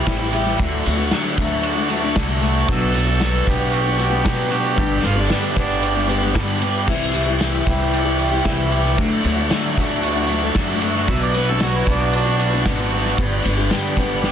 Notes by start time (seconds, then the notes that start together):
Already playing: E3 G3 G4
0.05 A1 C3 E3 G3 E4 G4, kick, snare, ride
0.18 G3 E4 G4
0.32 E3 G3 E4 G4, ride
0.46 snare
0.58 D2 D3 F#3 A3 D4 F#4, kick, ride
0.84 D2 F#3 A3 D4 F#4, ride
0.97 A3 D4 F#4
1.11 D3 F#3 A3 D4 F#4, snare, ride
1.37 D2 F#3 A3 D4 F#4, kick, ride
1.63 F#4, ride
1.75 A3 D4 F#4
1.89 F#3 A3 D4 F#4, ride
2.02 A3 D4 F#4
2.16 C2 D3 F#3 A3 D4 F#4, kick, snare, ride
2.40 F#3 A3 D4 F#4, ride
2.67 B1 B2 F#3 B3 D4 F#4, kick, ride
2.71 A4
2.94 F#3 B3 D4 F#4, ride
3.06 B3 D4 F#4
3.19 B2 F#3 B3 D4 F#4, snare, ride
3.46 B1 B3 D4 G4, kick, ride
3.72 F#4, ride
3.85 B3 D4 F#4
3.97 F#3 B3 D4 F#4, ride
4.02 G4
4.10 B3 D4 F#4
4.23 B2 F#3 B3 D4 F#4, kick, snare, ride
4.49 F#3 B3 D4 F#4, ride
4.53 G4
4.76 G1 G2 D3 G3 B3 D4 G4, kick, ride
5.02 G1 D3 G3 B3 D4 F4 G4, ride
5.15 G3 B3 D4 G4
5.20 D4
5.29 G2 D3 G3 B3 D4 G4, snare, ride
5.54 G1 G3 B3 D4 G4, kick, ride
5.59 D4
5.82 G4, ride
5.95 G3 B3 D4 G4
6.07 G3 B3 D4 G4, ride
6.21 G3 B3 D4 G4
6.33 G2 D3 G3 B3 D4 G4, kick, snare, ride
6.60 G3 B3 D4 G4, ride
6.87 C2 C3 E3 G3 C4 E4 G4 C5, kick, crash
7.13 E3 G3 E4 G4, ride
7.26 G3 E4 G4
7.40 C3 E3 G3 E4 G4, snare, ride
7.65 C2 E3 G3 E4 G4, kick, ride
7.91 G4, ride
8.05 G3 E4 G4
8.18 E3 G3 E4 G4, ride
8.31 G3 E4 G4
8.44 C2 C3 E3 G3 E4 G4, kick, snare, ride
8.71 E3 G3 E4 G4, ride
8.85 snare
8.96 D2 D3 F#3 A3 D4 F#4 A4 D5, kick, ride
9.24 D2 F#3 A3 D4 F#4, ride
9.36 A3 D4 F#4
9.49 D3 F#3 A3 D4 F#4, snare, ride
9.76 D2 F#3 A3 D4 F#4, kick, ride
10.03 F#4, ride
10.15 A3 D4 F#4
10.28 F#3 A3 D4 F#4, ride
10.41 A3 D4 F#4
10.55 F#2 D3 F#3 A3 D4 F#4, kick, snare, ride
10.69 A3 D4 F#4
10.82 F#3 A3 D4 F#4, ride
10.95 snare
11.08 B1 B2 F#3 B3 D4 F#4 B4 D5 E5, kick, ride
11.22 D5
11.34 F#3 B3 D4 F#4 B4, ride
11.49 B3 D4 F#4 A4
11.61 B2 F#3 B3 D4 F#4, snare, ride
11.76 E4
11.86 B1 F#3 B3 D4 F#4, kick, ride
11.90 D4
12.12 D4 F#4, ride
12.26 B3 D4 F#4
12.39 F#3 B3 D4 F#4, ride
12.53 B3 D4 F#4
12.66 G#1 B2 F#3 B3 D4 F#4, kick, snare, ride
12.80 B3 D4 F#4
12.90 F#3 B3 D4 F#4, ride
12.95 F#4
13.05 snare
13.17 G1 G2 D3 G3 B3 D4 G4 B4 D5, kick, ride
13.44 G1 D3 G3 B3 D4 G4, ride
13.57 G3 B3 D4 G4
13.69 G2 D3 G3 B3 D4 G4, snare, ride
13.97 G1 G3 B3 D4 G4, kick, ride
14.22 G4, snare